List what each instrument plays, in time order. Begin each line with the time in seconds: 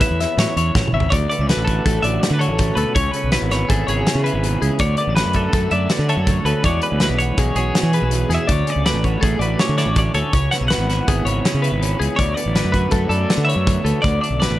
Already playing: clean electric guitar A2 E3 B3 C#4 B4
0.01 clean electric guitar E4 E5, kick, snare, closed hi-hat
0.11 fingered electric bass E2
0.20 clean electric guitar E2 B3 E5, snare, closed hi-hat
0.37 fingered electric bass A2, clean electric guitar C#5, snare, closed hi-hat
0.56 fingered electric bass E2, clean electric guitar E4 C#5, closed hi-hat
0.75 fingered electric bass A1, clean electric guitar B2, kick, snare
0.88 mid tom
0.93 fingered electric bass G#1, clean electric guitar C#3 E5
1.00 floor tom
1.10 fingered electric bass D2, clean electric guitar D2 C#5 D5, kick, closed hi-hat
1.30 clean electric guitar B3 D5, closed hi-hat
1.39 fingered electric bass C#2, clean electric guitar C#4
1.47 clean electric guitar D3 A3 B4, snare, closed hi-hat
1.57 fingered electric bass A1
1.65 clean electric guitar A4, kick, closed hi-hat
1.69 clean electric guitar F#4
1.86 fingered electric bass A1, clean electric guitar A3 A4, kick, closed hi-hat
2.02 fingered electric bass A1, clean electric guitar A2 F#4 D5 E5, closed hi-hat
2.21 clean electric guitar B3 D5, snare, closed hi-hat
2.31 fingered electric bass D3, clean electric guitar C#4 B4
2.39 clean electric guitar F#4 A4 C#5, closed hi-hat
2.48 fingered electric bass A1
2.59 clean electric guitar A2, kick, closed hi-hat
2.75 fingered electric bass D2, clean electric guitar A4 B4, closed hi-hat
2.79 clean electric guitar B2
2.95 fingered electric bass C#2, clean electric guitar C#3 C#5, kick, closed hi-hat
3.12 clean electric guitar B4, closed hi-hat
3.16 clean electric guitar C#4
3.24 fingered electric bass B1
3.32 clean electric guitar E3 B3 B4, snare, closed hi-hat
3.42 fingered electric bass G#1
3.51 clean electric guitar E4 C#5, snare, closed hi-hat
3.69 fingered electric bass G#1, clean electric guitar B3 G#4 A4, kick, closed hi-hat
3.87 fingered electric bass G#1, clean electric guitar C#3 E4 G#4 C#5, closed hi-hat
4.07 clean electric guitar C#4, snare, closed hi-hat
4.15 fingered electric bass C#3
4.24 clean electric guitar E4 B4, closed hi-hat
4.34 fingered electric bass G#1
4.44 clean electric guitar B2, closed hi-hat
4.62 fingered electric bass C#2, clean electric guitar C#3 G#4, closed hi-hat
4.79 fingered electric bass D2, clean electric guitar C#5 D5, kick, closed hi-hat
4.83 clean electric guitar D2
4.97 clean electric guitar B3 D5, closed hi-hat
5.07 fingered electric bass A1, clean electric guitar C#4
5.15 clean electric guitar D3 A3 B4, snare, closed hi-hat
5.26 fingered electric bass F#2
5.33 clean electric guitar E4 A4, kick, closed hi-hat
5.44 clean electric guitar F#4
5.53 fingered electric bass F#2, clean electric guitar A3 A4, kick, closed hi-hat
5.71 clean electric guitar D2 F#4 D5 E5, fingered electric bass F#2, closed hi-hat
5.89 clean electric guitar B3 D5, snare, closed hi-hat
5.99 fingered electric bass D3, clean electric guitar C#4
6.09 clean electric guitar E4 A4 C#5, closed hi-hat
6.17 fingered electric bass F#2, clean electric guitar F#4
6.27 clean electric guitar D2, kick, closed hi-hat
6.45 fingered electric bass D2, clean electric guitar C#4 A4 B4, closed hi-hat
6.64 fingered electric bass E2, clean electric guitar E2 E3 G#3 C#4 C#5 D5, kick, closed hi-hat
6.68 clean electric guitar F#4
6.82 clean electric guitar C#4 B4, closed hi-hat
6.92 fingered electric bass D2
7.00 clean electric guitar E3 G#3 B4, snare, closed hi-hat
7.09 fingered electric bass B1
7.19 clean electric guitar F#4 C#5, closed hi-hat
7.38 fingered electric bass B1, clean electric guitar G#3 G#4, kick, closed hi-hat
7.55 fingered electric bass B1, clean electric guitar B2 F#4 G#4 C#5, closed hi-hat
7.75 clean electric guitar B3, snare, closed hi-hat
7.83 fingered electric bass E3, clean electric guitar C#4
7.93 clean electric guitar F#4 B4, closed hi-hat
8.02 fingered electric bass B1
8.11 clean electric guitar E2, closed hi-hat
8.29 fingered electric bass E2, clean electric guitar B3 G#4, snare, closed hi-hat
8.35 clean electric guitar E5
8.41 clean electric guitar C#4
8.47 fingered electric bass D2, clean electric guitar D2 D5, kick, closed hi-hat
8.51 clean electric guitar C#5
8.67 clean electric guitar C#4 D5, closed hi-hat
8.76 fingered electric bass C#2
8.86 clean electric guitar D3 A3 B4 D5, snare, closed hi-hat
8.94 fingered electric bass A1
9.04 clean electric guitar F#4 C#5, kick, closed hi-hat
9.21 fingered electric bass A1, clean electric guitar A3 G#4 A4, kick, closed hi-hat
9.39 fingered electric bass A1, clean electric guitar A2 F#4 B4 D5, closed hi-hat
9.59 clean electric guitar C#4 C#5, snare, closed hi-hat
9.69 fingered electric bass D3
9.78 clean electric guitar E4 C#5 D5, snare, closed hi-hat
9.86 fingered electric bass A1, clean electric guitar F#4
9.96 clean electric guitar D2 D5, kick, closed hi-hat
10.14 fingered electric bass D2, clean electric guitar C#4 A4 C#5, closed hi-hat
10.33 fingered electric bass C#2, clean electric guitar C#3 C#5, kick, closed hi-hat
10.51 clean electric guitar B3 F#5, snare, closed hi-hat
10.61 fingered electric bass B1, clean electric guitar C#4
10.68 clean electric guitar B4 F#5, snare, closed hi-hat
10.72 clean electric guitar E3 B3
10.78 fingered electric bass G#1
10.90 clean electric guitar E4, snare, closed hi-hat
11.08 fingered electric bass G#1, clean electric guitar B3 G#4, kick, closed hi-hat
11.25 fingered electric bass G#1, clean electric guitar C#3 E4 C#5, closed hi-hat
11.44 clean electric guitar C#4, snare, closed hi-hat
11.54 fingered electric bass C#3
11.62 clean electric guitar E4 B4, closed hi-hat
11.72 fingered electric bass G#1
11.81 clean electric guitar C#3, closed hi-hat
12.00 fingered electric bass C#2, clean electric guitar C#4 G#4, closed hi-hat
12.16 clean electric guitar D2 C#5 D5, fingered electric bass D2, kick, closed hi-hat
12.34 clean electric guitar B3 D5, closed hi-hat
12.46 fingered electric bass A1
12.55 clean electric guitar D3 A3 B4, snare, closed hi-hat
12.65 fingered electric bass F#2
12.72 clean electric guitar F#4 B4, kick, closed hi-hat
12.91 fingered electric bass F#2, clean electric guitar A3 A4, kick, closed hi-hat
13.09 clean electric guitar D2 E4 A4 D5, fingered electric bass F#2, closed hi-hat
13.21 clean electric guitar F#4
13.30 clean electric guitar B3, snare, closed hi-hat
13.38 fingered electric bass D3
13.45 clean electric guitar E4 E5
13.49 clean electric guitar C#5, closed hi-hat
13.55 fingered electric bass F#2, clean electric guitar F#4
13.66 clean electric guitar D2, kick, closed hi-hat
13.84 fingered electric bass D2, clean electric guitar B3 A4, closed hi-hat
14.02 clean electric guitar D2 D5, fingered electric bass D2, kick, closed hi-hat
14.21 clean electric guitar D4 D5, closed hi-hat
14.30 fingered electric bass B1
14.39 clean electric guitar D3 B3 B4 D5, snare, closed hi-hat
14.51 fingered electric bass A1